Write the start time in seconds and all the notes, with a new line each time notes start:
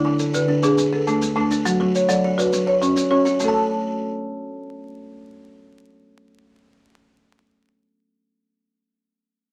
Already playing: D3
0.05 D3 D4
0.19 A4, maracas
0.34 D3 F#4 B4, maracas
0.48 D4
0.63 D4 G#4 B4, maracas
0.77 D3, maracas
0.92 A4
1.07 A3 D4, maracas
1.21 A3, maracas
1.36 A3 D4 A4
1.51 D4, maracas
1.65 F#3 F#4, maracas
1.80 F#3 F#4
1.95 C#5, maracas
2.09 F#3 A4 D5, maracas
2.24 F#4
2.38 F#4 B4 D5, maracas
2.53 F#3, maracas
2.67 C#5
2.81 C#4 F#4, maracas
2.96 C#4, maracas
3.11 C#4 F#4 C#5
3.25 F#4, maracas
3.40 A3, maracas
3.44 A4
3.48 A5